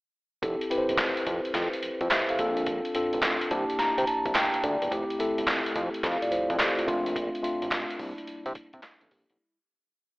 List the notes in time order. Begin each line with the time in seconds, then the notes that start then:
0.42 F1 C4 E4 G4 A4, kick, closed hi-hat
0.61 closed hi-hat
0.70 C4 E4 G4 B4, closed hi-hat
0.78 C5
0.89 G1, closed hi-hat
0.98 F1, snare, clap, closed hi-hat
1.17 closed hi-hat
1.27 F2, kick, closed hi-hat
1.45 closed hi-hat
1.54 F2, kick, snare, closed hi-hat
1.73 closed hi-hat
1.83 F2, closed hi-hat
2.01 F2 E4 C5, kick, closed hi-hat
2.11 G4 E5, snare, clap, closed hi-hat
2.29 A4 F5, closed hi-hat
2.39 A#1 C4 D4 F4 A4, kick, closed hi-hat
2.57 closed hi-hat
2.66 kick, closed hi-hat
2.85 closed hi-hat
2.95 C4 D4 F4 A4, closed hi-hat
3.13 A1, closed hi-hat
3.22 A1, snare, clap, closed hi-hat
3.41 closed hi-hat
3.51 C2 A#3 D4 E4 G4 A5, kick, closed hi-hat
3.70 closed hi-hat
3.79 C3 A#5, snare, closed hi-hat
3.98 C3, closed hi-hat
4.07 A5, closed hi-hat
4.26 C2, kick, closed hi-hat
4.35 G5, snare, clap, closed hi-hat
4.54 closed hi-hat
4.64 D2 D5, kick, closed hi-hat
4.82 E1, closed hi-hat
4.91 F1 A3 C4 E4 G4, kick, closed hi-hat
5.10 closed hi-hat
5.19 A3 C4 E4 A4, closed hi-hat
5.38 G1, closed hi-hat
5.48 F1, snare, clap, closed hi-hat
5.66 closed hi-hat
5.76 F2, kick, closed hi-hat
5.94 closed hi-hat
6.03 F2 A4 F5, kick, snare, closed hi-hat
6.22 F4 D5, closed hi-hat
6.31 F2 E4 C5, closed hi-hat
6.50 F2 C4 A4, kick, closed hi-hat
6.59 G4, snare, clap, closed hi-hat
6.78 A3 F4, closed hi-hat
6.87 A#1 A3 C4 D4 F4, kick, closed hi-hat
7.06 closed hi-hat
7.16 kick, closed hi-hat
7.35 closed hi-hat
7.43 A3 C4 D4 F4, closed hi-hat
7.62 A1, closed hi-hat
7.71 A1, snare, clap, closed hi-hat
7.91 closed hi-hat
7.98 C2 G3 A#3 D4 E4, kick, open hi-hat
8.18 closed hi-hat
8.27 closed hi-hat
8.46 C3, closed hi-hat
8.55 kick, closed hi-hat
8.73 C3, kick, closed hi-hat
8.83 snare, clap, closed hi-hat
9.01 A1 C4 A4, closed hi-hat
9.11 A#1 A#3 G4, kick, open hi-hat
9.30 B1 G3 E4, closed hi-hat